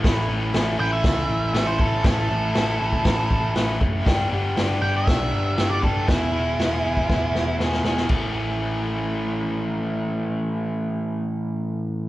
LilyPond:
<<
  \new Staff \with { instrumentName = "Lead electric guitar" } { \time 4/4 \key a \major \tempo 4 = 119 r4. g''16 e''4. c''16 a'8 | a'2. r4 | r4. g''16 e''4. d''16 a'8 | e'2. r4 |
r1 | r1 | }
  \new Staff \with { instrumentName = "Overdriven electric guitar" } { \time 4/4 \key a \major <a, e a cis' e'>8 <a cis' e'>8 <e a cis' e'>8 <a cis' e'>4. <a, e a cis' e'>8 <a cis' e'>8 | <a, e a cis' e'>8 <a cis' e'>8 <e a cis' e'>8 <a cis' e'>4. <a, e a cis' e'>8 <a cis' e'>8 | <g, d g b d' g'>8 <g b d' g'>8 <g b d' g'>8 <g b d' g'>4. <g, d g b d' g'>8 <g b d' g'>8 | <e, b, e b e' gis'>8 <e b e' gis'>8 <e b e' gis'>8 <e b e' gis'>4. <e, b, e b e' gis'>8 <e b e' gis'>8 |
<a, e a cis' e'>1~ | <a, e a cis' e'>1 | }
  \new Staff \with { instrumentName = "Picked electric bass" } { \clef bass \time 4/4 \key a \major a,,8 a,,8 a,,8 a,,8 cis,8 a,,8 a,,4 | a,,8 a,,8 a,,8 a,,8 a,,8 a,,8 a,,8 fis,,8 | g,,8 g,,8 g,,8 g,,8 b,,8 g,,8 g,,4 | e,,8 e,,8 e,,8 e,,8 e,,8 e,,8 e,,8 e,,8 |
a,,1~ | a,,1 | }
  \new DrumStaff \with { instrumentName = "Drums" } \drummode { \time 4/4 <hho bd sn>4 <hho sn>4 <hho bd sn>4 <hho sn>8 bd8 | <hho bd sn>4 <hho sn>8. bd16 <hho bd sn>8 bd8 <hho sn>8 bd8 | <hho bd sn>4 <hho sn>4 <hho bd sn>4 <hho sn>8 bd8 | <hho bd sn>4 <hho sn>8. bd16 <bd sn>8 sn8 sn16 sn16 sn16 sn16 |
<cymc bd>4 r4 r4 r4 | r4 r4 r4 r4 | }
>>